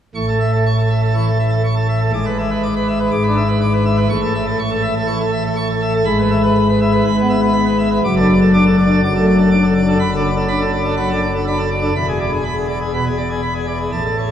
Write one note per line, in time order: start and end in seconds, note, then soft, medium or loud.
0.15 2.10 A1 medium
0.15 2.10 A2 medium
0.15 0.26 C#6 medium
0.28 0.39 A4 medium
0.40 0.51 E5 medium
0.53 0.64 A4 medium
0.66 0.76 C#6 medium
0.78 0.89 A4 medium
0.90 1.01 E5 medium
1.03 1.13 A4 medium
1.14 1.29 E3 medium
1.14 1.25 C#6 medium
1.26 1.38 A4 medium
1.39 1.50 E5 medium
1.50 1.62 A4 medium
1.64 1.75 C#6 medium
1.76 1.87 A4 medium
1.88 1.99 E5 medium
2.01 2.11 A4 medium
2.13 3.09 G#1 medium
2.13 3.09 G#2 medium
2.13 2.25 D6 medium
2.26 2.37 B4 medium
2.38 2.49 E5 medium
2.51 2.62 B4 medium
2.63 2.74 D6 medium
2.76 2.87 B4 medium
2.88 2.98 E5 medium
3.00 3.10 B4 medium
3.11 4.07 G#1 medium
3.11 4.07 G#2 medium
3.11 3.22 D6 medium
3.23 3.35 B4 medium
3.28 3.43 D4 medium
3.36 3.47 E5 medium
3.48 3.60 B4 medium
3.61 3.72 D6 medium
3.73 3.84 B4 medium
3.85 3.96 E5 medium
3.97 4.08 B4 medium
4.09 6.02 A1 medium
4.09 6.02 A2 medium
4.09 4.21 C#6 loud
4.22 4.33 A4 medium
4.34 4.45 E5 medium
4.47 4.58 A4 medium
4.59 4.70 C#6 medium
4.71 4.82 A4 medium
4.82 4.94 E5 medium
4.95 5.07 A4 medium
5.07 5.22 E3 medium
5.07 5.19 C#6 medium
5.20 5.31 A4 medium
5.31 5.43 E5 medium
5.44 5.55 A4 medium
5.56 5.68 C#6 medium
5.69 5.81 A4 medium
5.81 5.93 E5 medium
5.94 6.05 A4 medium
6.05 7.02 G#1 medium
6.05 7.02 G#2 medium
6.05 6.17 B5 loud
6.19 6.30 B4 medium
6.31 6.42 E5 medium
6.43 6.54 B4 medium
6.55 6.67 B5 medium
6.69 6.80 B4 medium
6.81 6.92 E5 medium
6.92 7.03 B4 medium
7.04 7.99 G#1 medium
7.04 7.99 G#2 medium
7.04 7.16 B5 medium
7.16 7.28 B4 medium
7.21 7.36 B3 medium
7.29 7.40 E5 medium
7.41 7.52 B4 medium
7.53 7.64 B5 medium
7.66 7.77 B4 medium
7.78 7.89 E5 medium
7.91 8.01 B4 medium
8.04 9.01 F#1 medium
8.04 9.01 F#2 medium
8.04 8.14 D6 loud
8.16 8.34 D4 medium
8.16 8.27 A4 medium
8.29 8.39 D5 medium
8.41 8.51 A4 medium
8.53 8.68 D4 medium
8.53 8.64 D6 medium
8.65 8.76 A4 medium
8.78 8.88 D5 medium
8.86 9.00 D4 medium
8.91 9.01 A4 medium
9.03 9.97 F#1 medium
9.03 9.97 F#2 medium
9.03 9.13 D6 medium
9.15 9.25 A4 medium
9.19 9.33 A3 medium
9.27 9.37 D5 medium
9.38 9.49 A4 medium
9.51 9.65 D4 medium
9.51 9.61 D6 medium
9.63 9.73 A4 medium
9.75 9.86 D5 medium
9.83 9.97 D4 medium
9.88 9.98 A4 medium
9.99 11.90 F#1 medium
9.99 11.91 F#2 medium
9.99 10.10 B5 loud
10.12 10.22 A4 medium
10.16 10.30 D4 medium
10.24 10.35 D5 medium
10.37 10.47 A4 medium
10.48 10.63 D4 medium
10.48 10.59 B5 medium
10.60 10.71 A4 medium
10.72 10.83 D5 medium
10.80 10.95 D4 medium
10.80 10.95 A4 medium
10.97 11.11 F#3 medium
10.97 11.08 B5 medium
11.09 11.27 D4 medium
11.09 11.20 A4 medium
11.22 11.32 D5 medium
11.34 11.45 A4 medium
11.47 11.61 D4 medium
11.47 11.57 B5 medium
11.59 11.69 A4 medium
11.71 11.82 D5 medium
11.80 11.93 D4 medium
11.80 11.93 A4 medium
11.95 13.89 E1 medium
11.95 13.89 E2 medium
11.95 12.06 B5 loud
12.08 12.19 G#4 medium
12.20 12.30 D5 medium
12.32 12.43 G#4 medium
12.44 12.55 B5 medium
12.56 12.67 G#4 medium
12.68 12.79 D5 medium
12.81 12.92 G#4 medium
12.93 13.08 B2 medium
12.93 13.04 B5 medium
13.06 13.16 G#4 medium
13.18 13.29 D5 medium
13.30 13.41 G#4 medium
13.42 13.53 B5 medium
13.54 13.66 G#4 medium
13.67 13.78 D5 medium
13.80 13.90 G#4 medium
13.92 14.31 A1 medium
13.92 14.31 A2 medium
13.92 14.03 A5 medium
14.05 14.16 A4 soft
14.18 14.29 C#5 medium